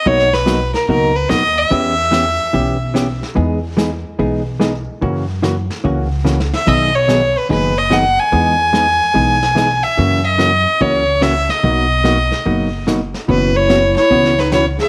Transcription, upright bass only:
X:1
M:4/4
L:1/8
Q:"Swing" 1/4=145
K:B
V:1 name="Upright bass" clef=bass
B,,,4 C,,2 D,,2 | E,,4 B,,,4 | E,,4 B,,,4 | F,,4 C,,4 |
B,,,4 F,,,4 | E,,4 B,,,4 | F,,4 C,,4 | B,,,4 F,,,4 |
F,,,4 C,,4 |]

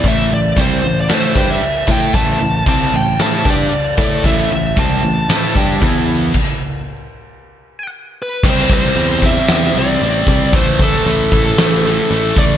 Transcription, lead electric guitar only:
X:1
M:4/4
L:1/16
Q:1/4=114
K:Am
V:1 name="Lead electric guitar"
e2 d2 c3 d c3 e3 g2 | a4 a2 g2 a2 d4 d2 | e2 e2 a12- | a12 z2 B2 |
c2 c4 e2 e2 d6 | c2 A12 d2 |]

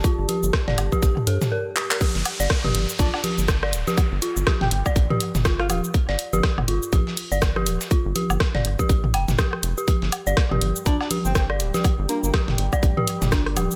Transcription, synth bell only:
X:1
M:4/4
L:1/16
Q:"Swing 16ths" 1/4=122
K:Gm
V:1 name="Synth bell"
F z G z2 d z G z2 A z B z G B | G z2 d z G z2 F z G z2 d z G | z2 F z G z2 d z G z2 F z G z | z d z G z2 F z G z2 d z G z2 |
F z G z2 d z G z2 g z G z2 G | G z2 d z G z2 D z G z2 d z G | z2 D z G z2 d z G z2 D z G z |]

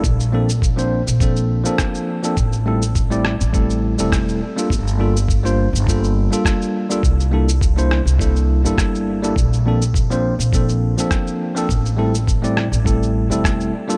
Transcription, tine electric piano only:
X:1
M:4/4
L:1/16
Q:"Swing 16ths" 1/4=103
K:Aphr
V:1 name="Tine electric piano"
z2 [F,B,CDA] z2 [F,B,CDc]2 z [F,B,CDA]3 [F,B,CDA]4 [F,B,CDA] | z2 [G,A,CEA] z2 [G,A,CEd]2 z [G,A,CEA]3 [G,A,CEA]3 z [G,B,DFA] | z2 [G,B,DFA] z2 [G,B,DFc]2 z [G,B,DFA]3 [G,B,DFA]4 [G,B,DFA] | z2 [G,B,DEA] z2 [G,B,DEc]2 z [G,B,DEA]3 [G,B,DEA]4 [G,B,DEA] |
z2 [F,B,CDA] z2 [F,B,CDc]2 z [F,B,CDA]3 [F,B,CDA]4 [F,B,CDA] | z2 [G,A,CEA] z2 [G,A,CEd]2 z [G,A,CEA]3 [G,A,CEA]3 z [G,B,DFA] |]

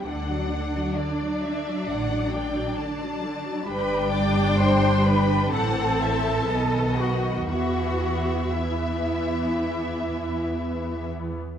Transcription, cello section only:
X:1
M:4/4
L:1/8
Q:1/4=64
K:Em
V:1 name="Cello section"
D8 | B d c B A3 F | F2 E4- E z |]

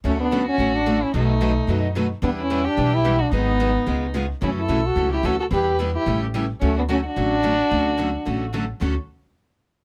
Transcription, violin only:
X:1
M:4/4
L:1/8
Q:"Swing" 1/4=219
K:D
V:1 name="Violin"
C D2 F2 F2 E | ^D6 z2 | D E2 G2 G2 F | ^D6 z2 |
E A2 A2 G A A | B2 z G2 z3 | C D F F4- F- | F6 z2 |
z8 |]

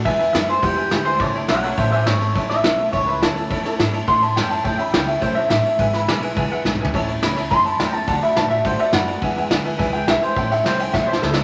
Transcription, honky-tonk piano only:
X:1
M:4/4
L:1/8
Q:1/4=210
K:A
V:1 name="Honky-tonk piano"
[Beg] [Beg] [Beg] [Beg] [Bef] [Beg] [Beg] [Beg] | [cea] [cea] [cea] [cea] [cea] [ceg] [cea] [cea] | [cea] [cea] [cea] [cea] [cea] [cea] [cea] [cea] | [cea] [cea] [cea] [cea] [cef] [cea] [cea] [cea] |
[cea] [ceb] [cea] [cea] [cea] [cea] [cea] [cea] | [Beg] [Beb] [Beg] [Beg] [Beg] [Bef] [Beg] [Beg] | [cea] [cea] [ceb] [cea] [ceg] [ceb] [cea] [cea] | [dfa] [dfb] [dfa] [dfa] [dfa] [dfa] [dfb] [dfa] |
[Beg] [Beg] [Beg] [Beg] [Beg] [Beg] [Beg] [Beg] | [cea] [cef] [cea] [ceg] [cef] [cea] [cea] [cea] |]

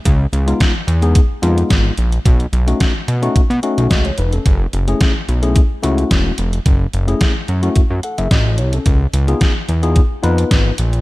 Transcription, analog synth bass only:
X:1
M:4/4
L:1/16
Q:1/4=109
K:F#dor
V:1 name="Analog synth bass" clef=bass
C,,2 C,,2 z2 E,,3 z ^E,,2 G,,,2 ^A,,,2 | B,,,2 B,,,2 z2 B,,2 B,, B,, z B,,, C,,2 ^E,,,2 | F,,,2 F,,,2 z2 B,,,3 z C,,2 E,,,2 ^E,,,2 | F,,,2 F,,,2 z2 F,,2 F,, F,, z F,,, A,,,2 ^B,,,2 |
C,,2 C,,2 z2 E,,3 z ^E,,2 G,,,2 ^A,,,2 |]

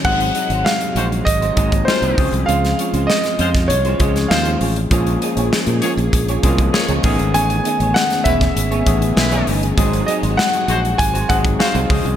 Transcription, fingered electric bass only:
X:1
M:4/4
L:1/16
Q:1/4=99
K:Abmix
V:1 name="Fingered electric bass" clef=bass
A,,,2 z A,,, z2 B,,,2 A,,,2 A,,,2 z C,, D,, C,, | D,,2 z D,, z2 F,,2 C,,2 D,,2 E,,2 =A,,,2 | B,,,2 z B,,, z B,, z B,,, B,,,2 C,,2 z D,, =A,,, ^G,,, | =A,,,2 z A,,, z2 =E,,,2 ^G,,,2 A,,,2 =B,,,2 =G,,,2 |
A,,,2 z A,,, z2 B,,,2 A,,,2 A,,,2 z C,, D,, C,, |]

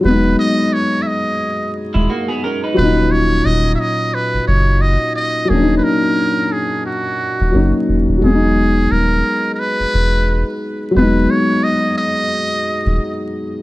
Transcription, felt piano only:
X:1
M:4/4
L:1/8
Q:"Swing 16ths" 1/4=88
K:Elyd
V:1 name="Felt piano"
[F,G,B,D]8 | [A,,F,CD]8 | [F,A,C=D^D]6 [F,A,CD]2 | [F,G,B,CD]8 |
[F,G,B,D]8 |]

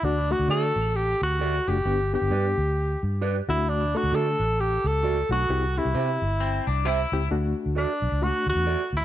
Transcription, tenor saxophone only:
X:1
M:4/4
L:1/8
Q:"Swing" 1/4=132
K:D
V:1 name="Tenor saxophone"
D F A2 G F2 G- | G G4 z2 E | D F A2 G A2 F- | F E4 z3 |
z2 D2 F F2 E |]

